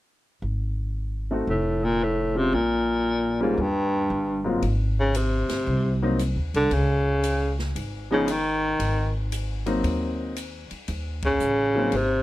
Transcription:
0.42 upright bass G#1
1.31 grand piano A3 C4 D#4 F#4
1.47 upright bass F1, baritone saxophone A2
1.84 baritone saxophone A#2
2.04 baritone saxophone A2
2.35 baritone saxophone C3, grand piano G#3 C4 C#4 F4
2.52 upright bass A#1, baritone saxophone A#2
3.40 baritone saxophone G#2, grand piano G3 A#3 C#4 F4
3.58 upright bass D#2, baritone saxophone G2
4.10 upright bass G1
4.45 grand piano G#2 F#3 A#3 C4 F4
4.62 upright bass G#1, ride
5.00 baritone saxophone C#3
5.15 baritone saxophone C3, hi-hat pedal, ride
5.49 upright bass G1, snare, ride
5.67 upright bass C2
6.02 grand piano F#3 A#3 C4 D#4
6.19 hi-hat pedal, ride
6.36 upright bass D#2
6.54 upright bass C2, baritone saxophone D3, ride
6.71 upright bass C#2, baritone saxophone C#3, ride
7.24 hi-hat pedal, ride
7.59 snare
7.76 upright bass G#1, ride
8.11 baritone saxophone C#3, grand piano F3 G#3 B3 D#4
8.28 baritone saxophone D#3, hi-hat pedal, ride
8.79 upright bass G#1, ride
9.32 hi-hat pedal, ride
9.66 grand piano F#3 A#3 C4 D#4, ride
9.84 upright bass D#2, ride
10.36 hi-hat pedal, ride
10.71 muted upright bass stroke, ride
10.88 upright bass D#2, ride
11.22 baritone saxophone C#3, kick, ride
11.40 upright bass A1, hi-hat pedal
11.75 grand piano F#3 A#3 C4 D#4
11.92 upright bass G#1, ride
11.97 baritone saxophone C3

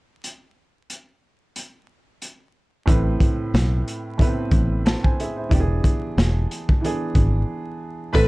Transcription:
0.24 closed hi-hat
0.90 closed hi-hat
1.56 closed hi-hat
2.22 closed hi-hat
2.86 fingered electric bass A1, grand piano A2 A3 C4, kick, closed hi-hat
2.90 grand piano B4
3.20 kick, closed hi-hat
3.54 fingered electric bass B1, snare, closed hi-hat
3.88 closed hi-hat
4.18 grand piano A2 A3 B3, kick, closed hi-hat
4.22 grand piano B4
4.27 grand piano C4
4.51 fingered electric bass A1, kick, closed hi-hat
4.85 grand piano C5 A5, snare, closed hi-hat
5.04 grand piano C5 G#5, kick
5.20 grand piano G#4 E5, closed hi-hat
5.36 grand piano E4 C5
5.49 fingered electric bass E1, grand piano E3 B3 D4, kick, closed hi-hat
5.54 grand piano G4
5.60 grand piano G#4
5.84 kick, closed hi-hat
6.17 fingered electric bass E1, snare, closed hi-hat
6.51 closed hi-hat
6.69 kick
6.81 grand piano E3 B3 D4, closed hi-hat
6.85 grand piano G#4
7.15 fingered electric bass G#1, kick, closed hi-hat
8.13 fingered electric bass A1, grand piano A2 A3 C4, analog synth pad A3 C4 E4, horn section C4 E4 B4, vibraphone A4, kick, closed hi-hat
8.17 grand piano B4

